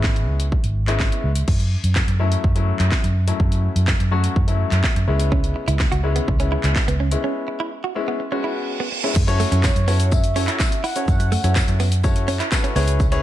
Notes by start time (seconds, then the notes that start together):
Already playing: G#1 G#3 B3 C#4 E4
0.04 kick, snare, clap
0.16 closed hi-hat
0.28 C#2
0.40 closed hi-hat
0.52 kick
0.64 G#1, closed hi-hat
0.87 G#3 B3 C#4 E4, clap, closed hi-hat
1.00 kick, snare, clap
1.12 closed hi-hat
1.24 C#2
1.36 closed hi-hat
1.48 F#2, kick, crash
1.60 closed hi-hat
1.84 F#2, closed hi-hat
1.96 kick, snare, clap
2.08 F#2, closed hi-hat
2.20 F#3 A3 C#4 E4
2.32 closed hi-hat
2.44 F#2, kick
2.55 F#3 A3 C#4 E4, closed hi-hat
2.79 F#2, clap, closed hi-hat
2.92 kick, snare, clap
3.04 F#2, closed hi-hat
3.27 F#3 A3 C#4 E4, closed hi-hat
3.40 F#2, kick
3.52 closed hi-hat
3.76 F#2, closed hi-hat
3.88 kick, snare, clap
4.00 F#2, closed hi-hat
4.11 F#3 A3 C#4 F#4
4.24 closed hi-hat
4.36 F#2, kick
4.48 F#3 A3 C#4 E4, closed hi-hat
4.72 F#2, clap, closed hi-hat
4.84 kick, snare, clap
4.96 F#2, closed hi-hat
5.07 C#2 G#3 B3 C#4 E4
5.20 closed hi-hat
5.32 C#4, kick
5.44 closed hi-hat
5.56 muted clean electric guitar stroke
5.68 C#2 E4, closed hi-hat
5.80 kick, snare, clap
5.92 C#2 F#4, closed hi-hat
6.03 G#3 B3 C#4 E4, muted clean electric guitar stroke
6.16 B3, closed hi-hat
6.28 C#2, muted clean electric guitar stroke, kick
6.40 G#3 B3 C#4 E4, closed hi-hat
6.52 E4
6.64 C#2, clap, closed hi-hat
6.76 muted clean electric guitar stroke, kick, snare, clap
6.88 C#2 B3, closed hi-hat
7.00 C#4
7.12 G#3 B3 C#4 E4, closed hi-hat
7.24 C#4
7.48 muted clean electric guitar stroke
7.60 E4
7.84 F#4
7.95 G#3 B3 C#4 E4, muted clean electric guitar stroke
8.08 B3
8.20 muted clean electric guitar stroke, reverse cymbal
8.32 G#3 B3 C#4 F#4
8.44 E4
8.80 B3
8.92 muted clean electric guitar stroke
9.03 G#3 B3 C#4 E4
9.16 F#2, kick, crash, shaker
9.27 C#4 E4 F#4 A4 C#5, muted clean electric guitar stroke, closed hi-hat, shaker
9.40 A3, open hi-hat, tambourine, shaker
9.52 F#2 C#4, closed hi-hat, shaker
9.64 C#5, kick, snare, clap, tambourine, shaker
9.76 F#2, closed hi-hat, shaker
9.87 B3 C#4 E4 F#4 A4 C#5, open hi-hat, tambourine, shaker
10.00 closed hi-hat, shaker
10.12 E5, muted clean electric guitar stroke, kick, tambourine, shaker
10.24 closed hi-hat, shaker
10.36 C#4 E4 F#4 A4 C#5, open hi-hat, tambourine, shaker
10.48 E4, clap, closed hi-hat, shaker
10.60 muted clean electric guitar stroke, kick, snare, clap, tambourine, shaker
10.72 closed hi-hat, shaker
10.84 E4 F#5, open hi-hat, shaker
10.96 C#4 E4 F#4 A4 C#5, closed hi-hat, shaker
11.08 F#2 F#5, kick, tambourine, shaker
11.20 muted clean electric guitar stroke, closed hi-hat, shaker
11.32 A3, open hi-hat, tambourine, shaker
11.44 F#2 C#4 E4 F#4 A4 C#5, closed hi-hat, shaker
11.56 kick, snare, clap, tambourine, shaker
11.68 F#2, closed hi-hat, shaker
11.80 B3, open hi-hat, tambourine, shaker
11.92 closed hi-hat, shaker
12.03 C#4 E4 F#4 A4 C#5, muted clean electric guitar stroke, kick, tambourine, shaker
12.16 closed hi-hat, shaker
12.28 C#4, open hi-hat, tambourine, shaker
12.40 E4, clap, closed hi-hat, shaker
12.52 C#4 E4 F#4 A4 B4, muted clean electric guitar stroke, kick, snare, clap, tambourine, shaker
12.64 C#4, closed hi-hat, shaker
12.76 C#2 B3 C#4 E4 G#4 B4 C#5, open hi-hat, shaker
12.88 closed hi-hat, shaker
13.00 kick, tambourine, shaker
13.12 C#4 E4 G#4 B4 C#5, muted clean electric guitar stroke, closed hi-hat, shaker